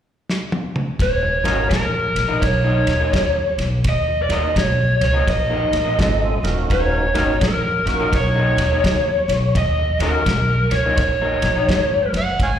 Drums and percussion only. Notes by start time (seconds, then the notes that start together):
0.29 snare
0.52 high tom
0.76 mid tom
0.99 kick, snare, ride
1.45 snare, ride
1.71 kick, snare, ride
2.16 snare, ride
2.42 kick, snare, ride
2.87 snare, ride
3.13 kick, snare, ride
3.59 snare, ride
3.84 kick, snare, ride
4.30 snare, ride
4.56 kick, snare, ride
5.01 snare, ride
5.28 kick, snare, ride
5.73 snare, ride
5.99 kick, snare, ride
6.44 snare, ride
6.70 kick, snare, ride
7.15 snare, ride
7.41 kick, snare, ride
7.87 snare, ride
8.13 kick, snare, ride
8.58 snare, ride
8.84 kick, snare, ride
9.29 snare, ride
9.55 kick, snare, ride
10.00 snare, ride
10.26 kick, snare, ride
10.71 snare, ride
10.97 kick, snare, ride
11.42 snare, ride
11.69 kick, snare, ride
12.14 snare, ride
12.40 kick, snare, ride